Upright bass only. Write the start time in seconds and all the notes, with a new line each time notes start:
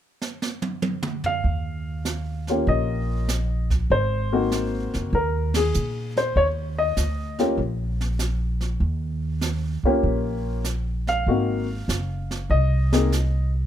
1.44 D#2
2.67 A#1
3.90 G#1
4.95 F#1
5.13 D#2
5.75 A#2
6.36 D#2
6.97 D2
7.57 A#1
8.80 D#2
9.83 muted upright bass stroke
10.03 A#1
11.27 G#1
11.88 F#1
12.50 C2